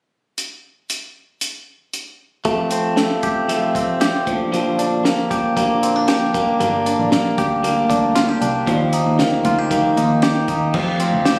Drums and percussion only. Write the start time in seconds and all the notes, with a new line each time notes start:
0.38 closed hi-hat
0.90 closed hi-hat
1.41 closed hi-hat
1.93 closed hi-hat
2.45 kick, closed hi-hat
2.71 closed hi-hat
2.97 snare, closed hi-hat
3.23 kick, closed hi-hat
3.49 closed hi-hat
3.75 kick, closed hi-hat
4.01 snare, closed hi-hat
4.27 kick, closed hi-hat
4.54 closed hi-hat
4.79 closed hi-hat
5.05 snare, closed hi-hat
5.31 kick, closed hi-hat
5.57 kick, closed hi-hat
5.83 closed hi-hat
6.08 snare, closed hi-hat
6.34 kick, closed hi-hat
6.61 closed hi-hat
6.86 closed hi-hat
7.12 snare, closed hi-hat
7.38 kick, closed hi-hat
7.64 closed hi-hat
7.90 kick, closed hi-hat
8.16 snare, closed hi-hat
8.42 closed hi-hat
8.67 kick, closed hi-hat
8.93 closed hi-hat
9.19 snare, closed hi-hat
9.45 kick, closed hi-hat
9.71 kick, closed hi-hat
9.97 closed hi-hat
10.22 snare, closed hi-hat
10.48 kick, closed hi-hat
10.74 kick, crash
11.00 closed hi-hat
11.25 snare, closed hi-hat